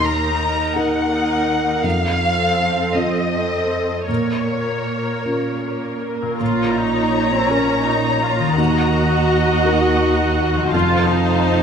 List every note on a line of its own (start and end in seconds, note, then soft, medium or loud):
0.00 0.64 D#2 medium
0.00 1.81 D#2 soft
0.04 1.10 D#4 soft
0.04 1.10 A#4 soft
0.04 0.77 A#5 medium
0.76 1.72 D#2 soft
0.76 1.80 D#4 soft
0.76 1.80 A#4 soft
0.76 1.85 F#5 medium
1.12 1.83 D#4 soft
1.12 1.83 A#4 soft
1.84 4.04 F2 soft
1.84 2.81 F2 medium
1.84 2.95 F5 medium
2.21 3.30 C4 soft
2.21 3.30 A4 soft
2.95 3.96 F2 soft
2.95 4.05 C4 soft
2.95 4.05 F4 soft
2.95 4.09 D#5 medium
3.33 4.07 C4 soft
3.33 4.07 A4 soft
4.08 6.36 A#2 soft
4.08 5.12 A#2 soft
4.08 4.46 A#3 soft
4.08 4.46 A#4 soft
4.08 5.98 C#5 soft
4.47 5.61 A#3 soft
4.47 5.61 A#4 soft
5.25 6.27 A#2 soft
5.25 6.37 C#4 soft
5.25 6.37 F4 soft
5.63 6.39 A#3 soft
5.63 6.39 A#4 soft
6.22 8.52 A#2 soft
6.26 8.42 A#3 soft
6.31 8.56 C#4 soft
6.35 8.52 A#4 soft
6.40 8.54 A#1 soft
6.40 8.54 A#2 soft
6.40 6.75 F4 medium
6.40 8.54 C#5 soft
6.40 10.69 A#5 soft
6.40 8.54 A#5 soft
6.77 7.32 D#4 medium
7.32 7.50 C4 soft
7.50 7.86 C#4 medium
7.50 8.54 C#4 soft
7.50 8.55 A#4 soft
7.85 8.22 D#4 soft
8.21 8.58 F4 soft
8.39 10.67 D#3 soft
8.44 10.69 A#3 soft
8.48 10.71 D#4 soft
8.53 10.74 A#4 soft
8.57 10.69 D#2 soft
8.57 10.70 F#4 medium
8.57 10.73 D#5 soft
8.57 10.70 F#5 soft
9.65 10.69 D#4 soft
9.65 10.69 A#4 soft
10.55 11.63 F3 soft
10.59 11.63 A3 soft
10.64 11.63 C4 soft
10.68 11.63 F4 soft
10.73 11.63 F1 soft
10.73 11.63 F2 medium
10.73 11.63 F2 soft
10.73 11.10 F4 medium
10.73 11.63 C5 soft
10.73 11.63 F5 soft
10.73 11.63 A5 soft
11.09 11.63 D#4 medium